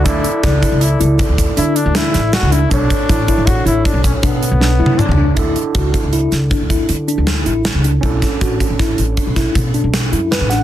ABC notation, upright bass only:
X:1
M:7/4
L:1/16
Q:1/4=158
K:D
V:1 name="Upright bass" clef=bass
D,,2 z2 C,,2 z C,,3 C,,2 z D,,2 z D,3 D,,3 A,,,3 C,,3 | B,,,2 z2 A,,,2 z A,,,3 A,,,2 z B,,,2 z B,,3 B,,,3 F,,3 C,,3 | D,,2 z2 C,,2 z C,,3 C,,2 z D,,2 z D,3 D,,3 A,,,3 C,,3 | B,,,2 z2 A,,,2 z A,,,3 A,,,2 z B,,,2 z B,,3 B,,,3 F,,3 A,,,3 |]